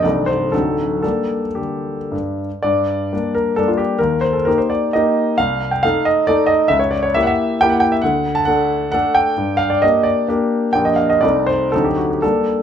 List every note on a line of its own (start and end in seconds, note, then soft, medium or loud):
0.03 0.51 C1 soft
0.03 0.52 C2 soft
0.03 0.49 A3 soft
0.03 0.49 C4 soft
0.03 0.49 D#4 soft
0.03 0.28 D5 medium
0.26 0.52 C5 medium
0.52 1.02 D1 soft
0.52 1.02 D2 soft
0.52 0.99 F#3 soft
0.52 1.00 C4 soft
0.52 1.00 D#4 soft
0.52 1.01 A4 medium
1.02 1.41 G3 soft
1.02 1.47 A#3 soft
1.02 1.47 D4 soft
1.02 1.57 A4 medium
1.55 1.96 D3 soft
1.55 2.38 G4 soft
2.12 2.48 G2 soft
2.63 3.11 G2 soft
2.63 3.35 D5 medium
3.13 3.54 G3 soft
3.13 3.54 A#3 soft
3.13 3.54 D4 soft
3.35 3.57 A#4 medium
3.56 3.97 G3 soft
3.56 3.97 A#3 soft
3.56 3.97 D4 soft
3.56 3.68 A4 medium
3.68 3.79 F4 soft
3.78 4.00 G4 medium
3.99 4.46 D#2 soft
3.99 4.22 A#4 medium
4.21 4.34 C5 medium
4.33 4.46 A4 soft
4.45 4.90 A#3 soft
4.45 4.90 D#4 soft
4.45 4.90 G4 soft
4.45 4.58 A#4 medium
4.58 4.71 C5 soft
4.70 4.94 D5 medium
4.93 5.35 A#3 soft
4.93 5.35 D#4 soft
4.93 5.35 G4 soft
4.93 5.38 D#5 medium
5.38 5.82 C2 soft
5.38 5.71 F5 medium
5.71 5.83 G5 soft
5.83 6.25 A3 soft
5.83 6.25 D#4 soft
5.83 6.25 A4 soft
5.83 6.06 F5 medium
6.05 6.28 D#5 medium
6.27 6.66 A3 soft
6.27 6.67 D#4 soft
6.27 6.67 A4 soft
6.27 6.49 D5 medium
6.46 6.69 D#5 medium
6.68 7.15 C#2 medium
6.68 6.80 E5 medium
6.79 6.92 C#5 medium
6.91 7.03 D5 medium
7.03 7.15 C#5 medium
7.14 7.58 A#3 soft
7.14 7.58 E4 soft
7.14 7.58 G4 soft
7.14 7.22 E5 medium
7.23 7.30 F#5 medium
7.27 7.60 E5 medium
7.61 8.01 A#3 soft
7.61 8.01 E4 soft
7.61 8.01 G4 medium
7.61 7.72 G5 medium
7.70 7.82 F#5 medium
7.80 7.92 G5 medium
7.92 8.03 E5 medium
8.02 8.47 D2 medium
8.02 8.36 F#5 medium
8.35 8.47 A5 medium
8.45 8.89 A3 soft
8.45 8.89 D4 soft
8.45 8.90 A4 soft
8.45 8.90 F#5 medium
8.92 9.33 A3 soft
8.92 9.33 D4 soft
8.92 9.34 A4 medium
8.92 9.15 F#5 medium
9.15 9.58 G5 medium
9.38 9.81 G2 soft
9.57 9.70 F5 medium
9.70 9.82 D5 medium
9.82 10.26 A#3 soft
9.82 10.26 D4 soft
9.82 10.26 G4 soft
9.82 10.06 D#5 medium
10.03 10.28 D5 medium
10.28 10.70 A#3 soft
10.28 10.70 D4 soft
10.28 10.71 G4 soft
10.73 11.21 A#1 medium
10.73 11.19 A#3 soft
10.73 11.19 D4 soft
10.73 11.19 G4 soft
10.73 10.85 G5 medium
10.85 10.98 D#5 medium
10.96 11.09 F5 medium
11.10 11.23 D#5 medium
11.21 11.71 C2 soft
11.21 11.69 A3 soft
11.21 11.69 C4 soft
11.21 11.69 D#4 soft
11.21 11.47 D5 medium
11.47 11.72 C5 medium
11.72 12.22 D2 soft
11.72 12.20 F#3 soft
11.72 12.20 C4 soft
11.72 12.20 D#4 soft
11.72 11.85 A4 medium
11.85 11.97 G4 soft
11.97 12.10 F#4 soft
12.10 12.23 G4 soft
12.22 12.61 G3 soft
12.22 12.62 A#3 soft
12.22 12.62 D4 soft
12.22 12.62 A4 medium